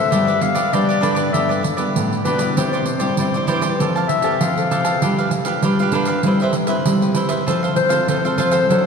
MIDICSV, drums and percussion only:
0, 0, Header, 1, 2, 480
1, 0, Start_track
1, 0, Key_signature, 0, "major"
1, 0, Tempo, 612870
1, 91, Time_signature, 4, 2, 24, 8
1, 6941, End_track
2, 0, Start_track
2, 0, Title_t, "Pandeiro"
2, 94, Note_on_c, 9, 54, 70
2, 172, Note_off_c, 9, 54, 0
2, 221, Note_on_c, 9, 54, 31
2, 299, Note_off_c, 9, 54, 0
2, 324, Note_on_c, 9, 54, 59
2, 402, Note_off_c, 9, 54, 0
2, 434, Note_on_c, 9, 54, 65
2, 513, Note_off_c, 9, 54, 0
2, 574, Note_on_c, 9, 54, 68
2, 652, Note_off_c, 9, 54, 0
2, 706, Note_on_c, 9, 54, 34
2, 785, Note_off_c, 9, 54, 0
2, 808, Note_on_c, 9, 54, 56
2, 886, Note_off_c, 9, 54, 0
2, 910, Note_on_c, 9, 54, 62
2, 989, Note_off_c, 9, 54, 0
2, 1050, Note_on_c, 9, 54, 70
2, 1128, Note_off_c, 9, 54, 0
2, 1184, Note_on_c, 9, 54, 31
2, 1262, Note_off_c, 9, 54, 0
2, 1286, Note_on_c, 9, 54, 61
2, 1365, Note_off_c, 9, 54, 0
2, 1393, Note_on_c, 9, 54, 60
2, 1472, Note_off_c, 9, 54, 0
2, 1535, Note_on_c, 9, 54, 74
2, 1613, Note_off_c, 9, 54, 0
2, 1665, Note_on_c, 9, 54, 33
2, 1743, Note_off_c, 9, 54, 0
2, 1765, Note_on_c, 9, 54, 58
2, 1843, Note_off_c, 9, 54, 0
2, 1871, Note_on_c, 9, 54, 66
2, 1950, Note_off_c, 9, 54, 0
2, 2013, Note_on_c, 9, 54, 78
2, 2092, Note_off_c, 9, 54, 0
2, 2143, Note_on_c, 9, 54, 30
2, 2221, Note_off_c, 9, 54, 0
2, 2237, Note_on_c, 9, 54, 55
2, 2315, Note_off_c, 9, 54, 0
2, 2347, Note_on_c, 9, 54, 68
2, 2426, Note_off_c, 9, 54, 0
2, 2485, Note_on_c, 9, 54, 71
2, 2563, Note_off_c, 9, 54, 0
2, 2617, Note_on_c, 9, 54, 33
2, 2695, Note_off_c, 9, 54, 0
2, 2723, Note_on_c, 9, 54, 60
2, 2801, Note_off_c, 9, 54, 0
2, 2835, Note_on_c, 9, 54, 67
2, 2914, Note_off_c, 9, 54, 0
2, 2978, Note_on_c, 9, 54, 73
2, 3056, Note_off_c, 9, 54, 0
2, 3100, Note_on_c, 9, 54, 30
2, 3178, Note_off_c, 9, 54, 0
2, 3204, Note_on_c, 9, 54, 59
2, 3283, Note_off_c, 9, 54, 0
2, 3308, Note_on_c, 9, 54, 63
2, 3386, Note_off_c, 9, 54, 0
2, 3452, Note_on_c, 9, 54, 76
2, 3530, Note_off_c, 9, 54, 0
2, 3583, Note_on_c, 9, 54, 35
2, 3661, Note_off_c, 9, 54, 0
2, 3692, Note_on_c, 9, 54, 68
2, 3770, Note_off_c, 9, 54, 0
2, 3796, Note_on_c, 9, 54, 71
2, 3874, Note_off_c, 9, 54, 0
2, 3931, Note_on_c, 9, 54, 72
2, 4009, Note_off_c, 9, 54, 0
2, 4061, Note_on_c, 9, 54, 33
2, 4139, Note_off_c, 9, 54, 0
2, 4159, Note_on_c, 9, 54, 60
2, 4237, Note_off_c, 9, 54, 0
2, 4267, Note_on_c, 9, 54, 71
2, 4345, Note_off_c, 9, 54, 0
2, 4405, Note_on_c, 9, 54, 75
2, 4483, Note_off_c, 9, 54, 0
2, 4537, Note_on_c, 9, 54, 36
2, 4615, Note_off_c, 9, 54, 0
2, 4634, Note_on_c, 9, 54, 60
2, 4712, Note_off_c, 9, 54, 0
2, 4741, Note_on_c, 9, 54, 63
2, 4820, Note_off_c, 9, 54, 0
2, 4880, Note_on_c, 9, 54, 74
2, 4958, Note_off_c, 9, 54, 0
2, 5010, Note_on_c, 9, 54, 31
2, 5089, Note_off_c, 9, 54, 0
2, 5112, Note_on_c, 9, 54, 59
2, 5190, Note_off_c, 9, 54, 0
2, 5223, Note_on_c, 9, 54, 66
2, 5301, Note_off_c, 9, 54, 0
2, 5369, Note_on_c, 9, 54, 80
2, 5447, Note_off_c, 9, 54, 0
2, 5499, Note_on_c, 9, 54, 37
2, 5578, Note_off_c, 9, 54, 0
2, 5596, Note_on_c, 9, 54, 65
2, 5674, Note_off_c, 9, 54, 0
2, 5708, Note_on_c, 9, 54, 72
2, 5786, Note_off_c, 9, 54, 0
2, 5856, Note_on_c, 9, 54, 76
2, 5934, Note_off_c, 9, 54, 0
2, 5983, Note_on_c, 9, 54, 33
2, 6062, Note_off_c, 9, 54, 0
2, 6079, Note_on_c, 9, 54, 64
2, 6158, Note_off_c, 9, 54, 0
2, 6189, Note_on_c, 9, 54, 65
2, 6267, Note_off_c, 9, 54, 0
2, 6331, Note_on_c, 9, 54, 76
2, 6409, Note_off_c, 9, 54, 0
2, 6461, Note_on_c, 9, 54, 37
2, 6539, Note_off_c, 9, 54, 0
2, 6564, Note_on_c, 9, 54, 61
2, 6642, Note_off_c, 9, 54, 0
2, 6669, Note_on_c, 9, 54, 66
2, 6747, Note_off_c, 9, 54, 0
2, 6817, Note_on_c, 9, 54, 76
2, 6895, Note_off_c, 9, 54, 0
2, 6941, End_track
0, 0, End_of_file